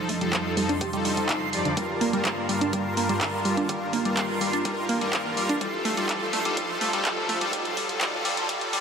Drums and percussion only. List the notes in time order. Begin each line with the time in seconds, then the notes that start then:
0.09 kick, open hi-hat
0.21 closed hi-hat
0.33 kick, clap, closed hi-hat
0.57 open hi-hat
0.69 closed hi-hat
0.81 kick, closed hi-hat
0.93 closed hi-hat
1.05 open hi-hat
1.17 closed hi-hat
1.29 kick, clap, closed hi-hat
1.53 open hi-hat
1.65 closed hi-hat
1.77 kick, closed hi-hat
2.01 open hi-hat
2.13 closed hi-hat
2.25 kick, clap, closed hi-hat
2.49 open hi-hat
2.61 closed hi-hat
2.73 kick, closed hi-hat
2.97 open hi-hat
3.09 closed hi-hat
3.21 kick, clap, closed hi-hat
3.45 open hi-hat
3.57 closed hi-hat
3.69 kick, closed hi-hat
3.93 kick, open hi-hat
4.05 closed hi-hat
4.17 kick, clap, closed hi-hat
4.41 open hi-hat
4.53 closed hi-hat
4.65 kick, closed hi-hat
4.89 open hi-hat
5.01 closed hi-hat
5.13 kick, clap, closed hi-hat
5.37 open hi-hat
5.49 closed hi-hat
5.61 kick, closed hi-hat
5.85 open hi-hat
5.97 closed hi-hat
6.09 kick, clap, closed hi-hat
6.33 open hi-hat
6.45 closed hi-hat
6.57 kick, closed hi-hat
6.81 open hi-hat
6.93 closed hi-hat
7.05 kick, clap, closed hi-hat
7.29 open hi-hat
7.41 closed hi-hat
7.53 kick, closed hi-hat
7.65 closed hi-hat
7.77 kick, open hi-hat
7.89 closed hi-hat
8.01 kick, clap, closed hi-hat
8.25 open hi-hat
8.37 closed hi-hat
8.49 kick, closed hi-hat
8.61 closed hi-hat
8.73 open hi-hat